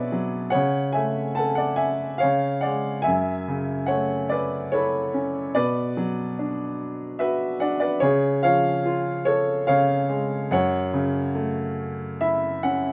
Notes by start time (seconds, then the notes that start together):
Already playing: B2 F#3 D4 F#4 G#4 B4 C#5 D5 E5
0.12 F#3
0.50 C#5 F#5
0.54 C#3
0.93 A3 E5 G#5
1.35 A4 F#5 A5
1.55 D5 F#5
1.76 E5 G#5
2.18 C#5 F5
2.23 C#3
2.61 D5 F#5
2.66 G#3
3.02 E5 G#5
3.07 F#2
3.48 C#3
3.86 C#5 F#5
3.91 A3
4.29 B4 D5
4.72 E4 A4 C#5
5.14 C#4
5.55 B2 B4 D5
5.97 F#3
6.39 D4
7.19 F#4 B4 E5
7.60 D4 D5 F#5
7.80 B4 D5
8.00 C#3 G#4 C#5
8.43 F3 C#5 F5
8.85 F4
9.25 A4 C#5
9.67 C#3 C#5 F5
10.10 G#3
10.51 F#2 C#5 F#5
10.94 C#3
11.35 A3
12.21 E4 E5
12.63 C#4 F#5